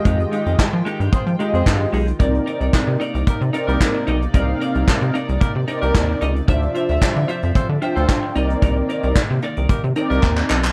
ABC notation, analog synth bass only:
X:1
M:4/4
L:1/16
Q:1/4=112
K:Cm
V:1 name="Analog synth bass" clef=bass
F,,2 z F,, F, F, z G,, F, F, z F,, G,,2 =B,,,2 | C,,2 z C,, C, C, z C,, C, C, z C,, z2 =B,,,2 | C,,2 z C,, C, C, z C,, C, C, z C,, E,,2 _D,,2 | D,,2 z D,, D, D, z F,, D, D, z D,, z2 C,,2 |
C,,2 z C,, C, C, z C,, C, C, z C,, E,,2 =B,,,2 |]